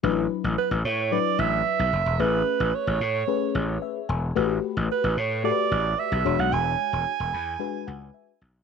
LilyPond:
<<
  \new Staff \with { instrumentName = "Alto saxophone" } { \time 4/4 \key d \lydian \tempo 4 = 111 r4 b'8 cis''8 d''8 e''4. | b'4 cis''2 r4 | r4 b'8 cis''8 d''4 e''8. fis''16 | gis''2.~ gis''8 r8 | }
  \new Staff \with { instrumentName = "FM electric piano" } { \time 4/4 \key d \lydian << { r1 | r2. e''8 gis''8 | r1 | r4. b''8 gis''8 fis''8 e''4 | } \\ { <fis d' e' b'>4. r8 <fis d' e' b'>4. r8 | <a cis' gis' b'>4. r8 <a cis' gis' b'>4. r8 | <a fis' g' b'>4. r8 <a fis' g' a' b'>4. <gis d' fis' cis''>8~ | <gis d' fis' cis''>4 r4 <gis d' fis' b'>4. r8 | } >> }
  \new Staff \with { instrumentName = "Slap bass" } { \clef bass \time 4/4 \key d \lydian a,,8 r16 a,,16 r16 a,,16 a,8. r16 a,,8 r16 b,,16 fis,,16 e,,16 | a,,8 r16 a,,16 r16 a,,16 a,8 r8 a,,8 r8 e,,8 | a,,8 r16 a,,16 r16 a,,16 a,8. r16 a,,8 r16 b,,16 e,,16 b,,16 | e,,8 r16 e,,16 r16 e,,16 e,8 r8 cis,8 r8 b,,8 | }
>>